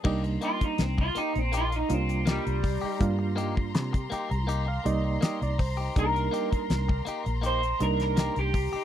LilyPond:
<<
  \new Staff \with { instrumentName = "String section" } { \time 4/4 \key c \minor \tempo 4 = 81 <bes'' c'''>1~ | <bes'' c'''>1~ | <bes'' c'''>1 | }
  \new Staff \with { instrumentName = "Clean electric guitar" } { \time 4/4 \key c \minor r8 f'16 ees'16 c'16 f'16 ees'16 c'16 f'16 ees'16 c'8 g4~ | g2 r2 | bes'2 c''8 bes'16 bes'8 g'8. | }
  \new Staff \with { instrumentName = "Clean electric guitar" } { \time 4/4 \key c \minor <bes ees' g'>16 r16 <bes ees' g'>16 r8. <bes ees' g'>16 r16 <bes ees' g'>16 r8. <bes ees' g'>16 r8 <ees' g'>16 | r8 <bes ees' g'>16 r8. <bes ees' g'>16 r16 <bes ees' g'>16 r8. <bes ees' g'>16 r8 <ees' g'>16 | r8 <bes ees' g'>16 r8. <bes ees' g'>16 r16 <bes ees' g'>16 r8. <bes ees' g'>16 r8 <ees' g'>16 | }
  \new Staff \with { instrumentName = "Reed electric piano" } { \time 4/4 \key c \minor << { r1 | r4. g''16 bes''16 g''16 f''16 ees''8 ees''16 d''16 c''8 | r1 | } \\ { <g bes d' ees'>4~ <g bes d' ees'>16 r4 r16 <g bes d' f'>4 r8 | <g bes d' f'>4~ <g bes d' f'>16 r4 r16 <g bes ees' d''>4 r8 | <g bes d' ees'>4~ <g bes d' ees'>16 r4 r16 <g bes d' ees'>4 r8 | } >> }
  \new Staff \with { instrumentName = "Fingered electric bass" } { \clef bass \time 4/4 \key c \minor c,8 r8 c,8 r16 bes,,8. c,8. c,8 r16 | g,4 c8 r16 c,8. c,8 r16 c,8. | c,8 r8 c,8 r16 bes,,8. c,8. c,8 r16 | }
  \new DrumStaff \with { instrumentName = "Drums" } \drummode { \time 4/4 <cymc bd>16 hh16 hh16 <hh bd>16 <hh sn>16 bd16 hh16 hh16 hh16 hh16 hh16 hh16 <hh sn>16 hh16 <hho bd>8 | <hh bd>8 hh16 bd16 <hh sn>16 <hh bd>16 hh16 hh16 hh8 hh8 <hh sn>16 hh16 <hho bd>8 | <hh bd>16 hh16 hh16 <hh bd>16 <hh sn>16 bd16 hh16 hh16 hh16 hh16 hh16 <hh sn>16 <hh sn>16 hh16 <hho bd>8 | }
>>